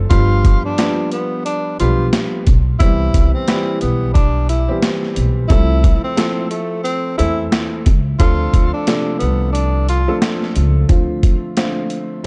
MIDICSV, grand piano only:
0, 0, Header, 1, 2, 480
1, 0, Start_track
1, 0, Tempo, 674157
1, 77, Time_signature, 4, 2, 24, 8
1, 8733, End_track
2, 0, Start_track
2, 0, Title_t, "Grand piano"
2, 0, Program_c, 0, 0
2, 71, Note_on_c, 0, 53, 96
2, 72, Note_on_c, 0, 55, 89
2, 74, Note_on_c, 0, 59, 89
2, 75, Note_on_c, 0, 62, 90
2, 77, Note_on_c, 0, 67, 112
2, 523, Note_off_c, 0, 53, 0
2, 524, Note_off_c, 0, 55, 0
2, 525, Note_off_c, 0, 59, 0
2, 525, Note_off_c, 0, 62, 0
2, 526, Note_off_c, 0, 67, 0
2, 556, Note_on_c, 0, 53, 93
2, 557, Note_on_c, 0, 55, 87
2, 559, Note_on_c, 0, 59, 85
2, 560, Note_on_c, 0, 62, 92
2, 561, Note_on_c, 0, 67, 100
2, 1230, Note_off_c, 0, 53, 0
2, 1231, Note_off_c, 0, 55, 0
2, 1232, Note_off_c, 0, 59, 0
2, 1232, Note_off_c, 0, 62, 0
2, 1233, Note_off_c, 0, 67, 0
2, 1277, Note_on_c, 0, 53, 95
2, 1279, Note_on_c, 0, 55, 92
2, 1280, Note_on_c, 0, 59, 92
2, 1281, Note_on_c, 0, 62, 79
2, 1282, Note_on_c, 0, 67, 108
2, 1726, Note_off_c, 0, 53, 0
2, 1727, Note_off_c, 0, 55, 0
2, 1728, Note_off_c, 0, 59, 0
2, 1728, Note_off_c, 0, 62, 0
2, 1729, Note_off_c, 0, 67, 0
2, 1997, Note_on_c, 0, 52, 95
2, 1998, Note_on_c, 0, 55, 83
2, 2000, Note_on_c, 0, 59, 85
2, 2001, Note_on_c, 0, 60, 80
2, 2003, Note_on_c, 0, 67, 104
2, 2446, Note_off_c, 0, 52, 0
2, 2447, Note_off_c, 0, 55, 0
2, 2448, Note_off_c, 0, 59, 0
2, 2448, Note_off_c, 0, 60, 0
2, 2449, Note_off_c, 0, 67, 0
2, 2475, Note_on_c, 0, 52, 95
2, 2476, Note_on_c, 0, 55, 95
2, 2477, Note_on_c, 0, 71, 87
2, 2479, Note_on_c, 0, 64, 83
2, 2480, Note_on_c, 0, 67, 105
2, 3259, Note_off_c, 0, 52, 0
2, 3260, Note_off_c, 0, 55, 0
2, 3260, Note_off_c, 0, 71, 0
2, 3261, Note_off_c, 0, 64, 0
2, 3262, Note_off_c, 0, 67, 0
2, 3334, Note_on_c, 0, 52, 88
2, 3335, Note_on_c, 0, 55, 85
2, 3336, Note_on_c, 0, 59, 81
2, 3337, Note_on_c, 0, 60, 84
2, 3339, Note_on_c, 0, 67, 109
2, 3875, Note_off_c, 0, 52, 0
2, 3875, Note_off_c, 0, 55, 0
2, 3876, Note_off_c, 0, 59, 0
2, 3877, Note_off_c, 0, 60, 0
2, 3877, Note_off_c, 0, 67, 0
2, 3917, Note_on_c, 0, 53, 91
2, 3919, Note_on_c, 0, 57, 86
2, 3920, Note_on_c, 0, 60, 90
2, 3922, Note_on_c, 0, 64, 89
2, 3923, Note_on_c, 0, 69, 108
2, 4366, Note_off_c, 0, 53, 0
2, 4367, Note_off_c, 0, 57, 0
2, 4368, Note_off_c, 0, 60, 0
2, 4369, Note_off_c, 0, 64, 0
2, 4369, Note_off_c, 0, 69, 0
2, 4390, Note_on_c, 0, 53, 100
2, 4391, Note_on_c, 0, 57, 83
2, 4392, Note_on_c, 0, 60, 87
2, 4394, Note_on_c, 0, 64, 86
2, 4395, Note_on_c, 0, 69, 116
2, 5067, Note_off_c, 0, 53, 0
2, 5068, Note_off_c, 0, 57, 0
2, 5068, Note_off_c, 0, 60, 0
2, 5069, Note_off_c, 0, 64, 0
2, 5070, Note_off_c, 0, 69, 0
2, 5109, Note_on_c, 0, 52, 97
2, 5111, Note_on_c, 0, 57, 85
2, 5112, Note_on_c, 0, 60, 93
2, 5113, Note_on_c, 0, 64, 93
2, 5115, Note_on_c, 0, 69, 102
2, 5562, Note_off_c, 0, 52, 0
2, 5563, Note_off_c, 0, 57, 0
2, 5564, Note_off_c, 0, 60, 0
2, 5564, Note_off_c, 0, 64, 0
2, 5565, Note_off_c, 0, 69, 0
2, 5837, Note_on_c, 0, 53, 93
2, 5838, Note_on_c, 0, 57, 87
2, 5840, Note_on_c, 0, 60, 93
2, 5841, Note_on_c, 0, 62, 87
2, 5842, Note_on_c, 0, 69, 121
2, 6286, Note_off_c, 0, 53, 0
2, 6287, Note_off_c, 0, 57, 0
2, 6288, Note_off_c, 0, 60, 0
2, 6288, Note_off_c, 0, 62, 0
2, 6289, Note_off_c, 0, 69, 0
2, 6316, Note_on_c, 0, 53, 93
2, 6318, Note_on_c, 0, 57, 86
2, 6319, Note_on_c, 0, 48, 89
2, 6320, Note_on_c, 0, 62, 88
2, 6322, Note_on_c, 0, 69, 105
2, 7100, Note_off_c, 0, 53, 0
2, 7101, Note_off_c, 0, 48, 0
2, 7101, Note_off_c, 0, 57, 0
2, 7102, Note_off_c, 0, 62, 0
2, 7103, Note_off_c, 0, 69, 0
2, 7173, Note_on_c, 0, 53, 95
2, 7174, Note_on_c, 0, 57, 91
2, 7175, Note_on_c, 0, 60, 82
2, 7177, Note_on_c, 0, 62, 79
2, 7179, Note_on_c, 0, 69, 106
2, 7714, Note_off_c, 0, 53, 0
2, 7715, Note_off_c, 0, 57, 0
2, 7716, Note_off_c, 0, 60, 0
2, 7716, Note_off_c, 0, 62, 0
2, 7717, Note_off_c, 0, 69, 0
2, 7749, Note_on_c, 0, 50, 87
2, 7751, Note_on_c, 0, 53, 85
2, 7752, Note_on_c, 0, 57, 83
2, 7753, Note_on_c, 0, 60, 80
2, 7755, Note_on_c, 0, 65, 102
2, 8202, Note_off_c, 0, 50, 0
2, 8203, Note_off_c, 0, 53, 0
2, 8204, Note_off_c, 0, 57, 0
2, 8204, Note_off_c, 0, 60, 0
2, 8205, Note_off_c, 0, 65, 0
2, 8237, Note_on_c, 0, 50, 89
2, 8238, Note_on_c, 0, 53, 89
2, 8239, Note_on_c, 0, 57, 83
2, 8241, Note_on_c, 0, 60, 89
2, 8242, Note_on_c, 0, 65, 100
2, 8704, Note_off_c, 0, 57, 0
2, 8706, Note_off_c, 0, 60, 0
2, 8717, Note_off_c, 0, 50, 0
2, 8717, Note_off_c, 0, 53, 0
2, 8719, Note_off_c, 0, 65, 0
2, 8733, End_track
0, 0, End_of_file